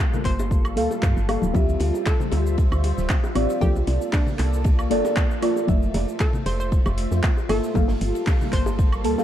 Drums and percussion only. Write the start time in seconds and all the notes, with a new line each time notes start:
0.00 cabasa
0.14 low conga, cabasa
0.25 kick, clap, open hi-hat
0.40 high bongo, cabasa
0.51 kick, cabasa
0.65 cabasa, high woodblock
0.77 open hi-hat
0.91 high bongo, cabasa
1.03 kick, clap, cabasa
1.17 cabasa
1.29 open hi-hat, high bongo, high woodblock
1.42 high conga, cabasa
1.54 kick, ride, high conga, cabasa
1.69 cabasa
1.80 snare, open hi-hat, ride
1.94 high bongo, cabasa
2.06 kick, snare, clap, ride, cabasa
2.20 low conga, cabasa
2.31 open hi-hat, ride, high bongo
2.47 cabasa
2.58 kick, ride, cabasa
2.72 ride, cabasa, high woodblock
2.84 open hi-hat, ride, high bongo
2.98 snare, cabasa
3.09 kick, snare, clap, ride, cabasa
3.24 high bongo, cabasa
3.35 open hi-hat, ride, high woodblock
3.50 ride, cabasa
3.61 kick, ride, high conga, cabasa
3.76 high bongo, cabasa
3.87 snare, open hi-hat, ride
4.02 cabasa
4.13 kick, snare, clap, open hi-hat, high bongo, cabasa
4.26 low conga, cabasa
4.39 clap, open hi-hat, ride
4.53 cabasa
4.64 kick, ride, high bongo, cabasa
4.79 cabasa, high woodblock
4.91 open hi-hat, ride
5.04 snare, high bongo, cabasa
5.16 kick, snare, clap, ride, cabasa
5.31 cabasa
5.42 snare, open hi-hat, ride, high woodblock
5.56 high bongo, cabasa
5.68 kick, ride, high conga, cabasa
5.83 cabasa
5.94 snare, open hi-hat, ride, high bongo
6.09 cabasa
6.20 kick, snare, clap, ride, cabasa
6.33 low conga, cabasa
6.46 open hi-hat, ride, high bongo
6.60 cabasa
6.72 kick, ride, cabasa
6.86 ride, high bongo, cabasa, high woodblock
6.97 open hi-hat, ride
7.11 snare, cabasa
7.23 kick, snare, clap, ride, cabasa
7.37 high bongo, cabasa
7.49 snare, open hi-hat, high woodblock
7.64 cabasa
7.75 kick, ride, high bongo, high conga, cabasa
7.88 snare, open hi-hat, cabasa
8.01 open hi-hat
8.15 ride, cabasa
8.27 kick, snare, clap, open hi-hat, high bongo, cabasa
8.41 low conga, cabasa
8.52 kick, clap, open hi-hat, ride
8.66 high bongo, cabasa
8.79 kick, ride, cabasa
8.93 cabasa, high woodblock
9.04 open hi-hat, ride
9.18 snare, high bongo, cabasa